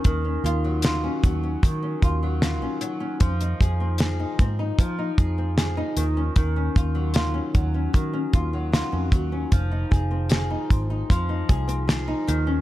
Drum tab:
HH |x-x-x-x-x-x-x-x-|xxx-x-x-x-x-x-x-|x-x-x-x-x-x-x-x-|x-x-x-x-x-xxx-x-|
SD |----o-------o---|----o-------o---|----o-------o---|----o-------o---|
BD |o-----o-o-o-----|o-o---o-o-o-----|o-o---o-o-o---o-|o-o---o-o-o-----|